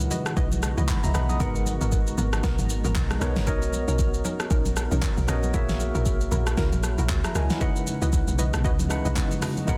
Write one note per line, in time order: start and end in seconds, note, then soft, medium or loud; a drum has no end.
0.00 0.16 C#3 medium
0.00 1.38 C#3 medium
0.00 1.36 E3 medium
0.00 0.17 G#3 medium
0.00 3.43 G#3 medium
0.00 1.38 B3 medium
0.00 0.17 D#4 medium
0.00 0.17 E4 medium
0.00 3.43 F#4 medium
0.00 0.17 B4 medium
0.00 3.43 D#5 medium
0.00 0.18 F#5 medium
0.00 shaker medium
0.11 0.26 E4 medium
0.11 0.26 F#4 medium
0.11 0.26 B4 medium
0.11 0.26 D#5 medium
0.11 high conga medium
0.11 shaker medium
0.26 cross-stick medium
0.26 shaker medium
0.36 0.75 B1 loud
0.36 0.51 E4 medium
0.36 0.52 F#4 medium
0.36 0.52 B4 medium
0.36 0.52 D#5 loud
0.36 kick loud
0.36 shaker medium
0.52 high conga medium
0.52 shaker medium
0.63 cross-stick medium
0.63 shaker medium
0.77 0.88 C#2 medium
0.77 0.88 E4 medium
0.77 0.88 F#4 medium
0.77 0.88 B4 medium
0.77 0.89 D#5 medium
0.77 high conga medium
0.77 shaker soft
0.88 1.03 F#5 medium
0.88 1.03 B5 medium
0.88 kick medium
0.88 clap medium
0.88 low conga medium
0.88 shaker medium
1.04 1.14 C#2 medium
1.04 1.14 E5 medium
1.04 1.14 A#5 medium
1.04 high conga medium
1.04 shaker medium
1.14 1.38 B1 medium
1.14 1.29 E4 medium
1.14 1.29 F#4 medium
1.14 1.29 B4 medium
1.14 1.29 D#5 medium
1.14 1.29 F#5 medium
1.14 1.29 B5 medium
1.14 cross-stick medium
1.14 low conga medium
1.14 shaker medium
1.29 1.54 A#5 medium
1.29 1.54 D#6 medium
1.29 high conga medium
1.29 shaker medium
1.39 1.78 G#1 loud
1.39 2.23 G#3 medium
1.39 1.55 B3 medium
1.39 3.45 B3 medium
1.39 2.23 D#4 medium
1.39 1.55 F#4 medium
1.39 2.24 A#4 medium
1.39 1.55 A#4 loud
1.39 2.24 B4 medium
1.39 2.24 F#5 medium
1.39 3.45 A#5 medium
1.39 kick loud
1.39 low conga medium
1.39 shaker medium
1.55 shaker medium
1.66 high conga medium
1.66 shaker medium
1.81 2.15 G#1 loud
1.81 1.92 B3 medium
1.81 1.92 F#4 medium
1.81 1.92 A#4 medium
1.81 shaker medium
1.92 kick loud
1.92 shaker medium
2.07 shaker medium
2.18 2.42 G#1 medium
2.18 2.33 B3 medium
2.18 2.33 F#4 medium
2.18 2.33 A#4 medium
2.18 high conga medium
2.18 shaker medium
2.33 cross-stick loud
2.33 shaker medium
2.43 2.58 B1 loud
2.43 2.58 B3 medium
2.43 2.58 F#4 medium
2.43 2.59 A#4 loud
2.43 kick loud
2.43 snare medium
2.43 shaker medium
2.59 2.83 G#1 medium
2.59 high conga medium
2.59 shaker medium
2.70 shaker loud
2.84 2.95 G#1 medium
2.84 2.95 B3 medium
2.84 2.95 F#4 medium
2.84 2.95 A#4 medium
2.84 high conga medium
2.84 shaker medium
2.95 3.19 B1 loud
2.95 kick medium
2.95 clap medium
2.95 low conga medium
2.95 shaker medium
3.10 cross-stick medium
3.10 high conga medium
3.10 shaker medium
3.20 3.35 B1 medium
3.20 3.42 G#3 medium
3.20 3.36 B3 medium
3.20 3.42 D#4 medium
3.20 3.36 F#4 medium
3.20 3.43 A#4 medium
3.20 3.36 A#4 medium
3.20 3.43 B4 medium
3.20 3.43 C#5 medium
3.20 cross-stick medium
3.20 low conga medium
3.20 shaker medium
3.36 3.49 G#1 medium
3.36 snare medium
3.36 high conga medium
3.36 shaker medium
3.46 3.85 B1 loud
3.46 4.30 B3 medium
3.46 5.52 B3 medium
3.46 3.62 C#4 medium
3.46 5.52 D#4 medium
3.46 3.62 D#4 medium
3.46 4.30 F#4 medium
3.46 7.57 A#4 medium
3.46 4.31 A#4 medium
3.46 3.62 A#4 loud
3.46 4.31 C#5 medium
3.46 4.31 D#5 loud
3.46 kick loud
3.46 low conga medium
3.46 shaker medium
3.62 shaker medium
3.73 high conga medium
3.73 shaker medium
3.88 4.22 B1 loud
3.88 3.99 C#4 medium
3.88 3.99 D#4 medium
3.88 3.99 A#4 medium
3.88 shaker medium
3.99 kick loud
3.99 shaker medium
4.14 shaker medium
4.24 4.39 C#4 medium
4.24 4.40 D#4 medium
4.24 4.40 A#4 medium
4.24 high conga medium
4.24 shaker medium
4.40 cross-stick medium
4.40 shaker medium
4.50 4.88 A#1 medium
4.50 4.65 C#4 medium
4.50 4.65 D#4 medium
4.50 4.66 A#4 loud
4.50 kick loud
4.50 shaker medium
4.66 high conga medium
4.66 shaker medium
4.77 cross-stick medium
4.77 shaker loud
4.91 5.02 B1 loud
4.91 5.02 C#4 medium
4.91 5.02 D#4 medium
4.91 5.02 A#4 medium
4.91 high conga medium
4.91 shaker medium
5.02 kick medium
5.02 clap medium
5.02 low conga medium
5.02 shaker medium
5.17 5.27 B1 medium
5.17 high conga medium
5.17 shaker medium
5.27 5.52 A#1 medium
5.27 5.49 B3 medium
5.27 5.43 C#4 medium
5.27 5.43 D#4 medium
5.27 5.49 F#4 medium
5.27 5.50 A#4 medium
5.27 5.43 A#4 medium
5.27 5.50 C#5 medium
5.27 5.50 D#5 medium
5.27 cross-stick medium
5.27 low conga medium
5.27 shaker medium
5.43 high conga medium
5.43 shaker medium
5.53 5.92 A#1 loud
5.53 7.59 F#3 medium
5.53 6.37 A#3 medium
5.53 5.69 E4 medium
5.53 7.59 E4 loud
5.53 6.37 F#4 medium
5.53 5.69 F#4 medium
5.53 6.38 G#4 medium
5.53 5.69 A#4 loud
5.53 6.38 C#5 medium
5.53 6.38 E5 loud
5.53 kick loud
5.53 low conga medium
5.53 shaker medium
5.69 snare medium
5.69 shaker medium
5.80 high conga medium
5.80 shaker medium
5.95 6.29 A#1 loud
5.95 6.06 E4 medium
5.95 6.06 F#4 medium
5.95 6.06 A#4 medium
5.95 shaker medium
6.06 kick loud
6.06 shaker medium
6.21 shaker medium
6.31 6.56 A#1 loud
6.31 6.46 E4 medium
6.31 6.46 F#4 medium
6.31 6.47 A#4 medium
6.31 high conga medium
6.31 low conga medium
6.31 shaker medium
6.47 cross-stick loud
6.47 shaker medium
6.57 6.71 C#2 loud
6.57 6.72 E4 medium
6.57 6.72 F#4 medium
6.57 6.72 A#4 loud
6.57 kick loud
6.57 snare medium
6.57 shaker medium
6.72 6.96 A#1 medium
6.72 high conga medium
6.72 shaker medium
6.83 cross-stick medium
6.83 shaker loud
6.98 7.08 A#1 medium
6.98 7.09 E4 medium
6.98 7.09 F#4 medium
6.98 7.09 A#4 medium
6.98 high conga medium
6.98 shaker medium
7.09 7.23 C#2 medium
7.09 kick medium
7.09 clap medium
7.09 low conga medium
7.09 shaker medium
7.24 7.35 E5 medium
7.24 7.35 A#5 medium
7.24 cross-stick medium
7.24 high conga medium
7.24 shaker medium
7.35 7.49 C#2 medium
7.35 7.50 E4 medium
7.35 7.50 F#4 medium
7.35 7.50 A#4 medium
7.35 7.50 D#5 medium
7.35 7.49 G#5 medium
7.35 cross-stick medium
7.35 low conga medium
7.35 shaker medium
7.50 7.75 C#5 medium
7.50 7.61 F#5 medium
7.50 snare medium
7.50 high conga medium
7.50 shaker medium
7.60 8.44 C#3 medium
7.60 9.66 C#3 medium
7.60 9.66 E3 medium
7.60 8.44 G#3 medium
7.60 9.78 G#3 medium
7.60 9.66 B3 medium
7.60 8.44 D#4 medium
7.60 7.76 E4 loud
7.60 8.45 E4 medium
7.60 9.78 F#4 medium
7.60 7.76 F#4 medium
7.60 7.76 B4 medium
7.60 8.45 B4 medium
7.60 9.78 D#5 medium
7.60 7.76 D#5 loud
7.60 8.45 F#5 loud
7.60 kick loud
7.60 low conga medium
7.60 shaker medium
7.76 shaker medium
7.87 high conga medium
7.87 shaker medium
8.02 8.26 C#2 loud
8.02 8.12 E4 medium
8.02 8.13 F#4 medium
8.02 8.13 B4 medium
8.02 8.13 D#5 medium
8.02 shaker medium
8.13 kick loud
8.13 shaker medium
8.28 8.52 B1 medium
8.28 shaker medium
8.38 8.53 E4 medium
8.38 8.53 F#4 medium
8.38 8.53 B4 medium
8.38 8.54 D#5 medium
8.38 high conga medium
8.38 shaker medium
8.54 8.64 B1 loud
8.54 cross-stick loud
8.54 shaker medium
8.64 9.02 C#2 loud
8.64 8.79 E4 medium
8.64 8.79 F#4 medium
8.64 8.79 B4 medium
8.64 8.79 D#5 loud
8.64 kick loud
8.64 shaker medium
8.79 high conga medium
8.79 shaker medium
8.89 9.53 C#3 medium
8.89 9.54 G#3 medium
8.89 9.54 D#4 medium
8.89 9.54 E4 medium
8.89 9.54 B4 medium
8.89 9.55 F#5 loud
8.89 cross-stick medium
8.89 shaker loud
9.05 9.15 B1 medium
9.05 9.16 E4 medium
9.05 9.16 F#4 medium
9.05 9.16 B4 medium
9.05 9.16 D#5 medium
9.05 high conga medium
9.05 shaker medium
9.16 kick loud
9.16 clap medium
9.16 low conga medium
9.16 shaker medium
9.31 high conga medium
9.31 shaker medium
9.42 9.57 E4 medium
9.42 9.57 F#4 medium
9.42 9.57 B4 medium
9.42 9.57 D#5 medium
9.42 cross-stick medium
9.42 open hi-hat medium
9.42 low conga medium
9.42 shaker medium
9.57 high conga medium
9.57 shaker medium
9.67 9.78 G#1 loud
9.67 9.78 G#3 medium
9.67 9.78 B3 loud
9.67 9.78 D#4 medium
9.67 9.78 F#4 medium
9.67 9.78 A#4 medium
9.67 9.78 A#4 loud
9.67 9.78 B4 medium
9.67 9.78 F#5 loud
9.67 9.78 A#5 medium
9.67 kick loud
9.67 low conga medium
9.67 shaker medium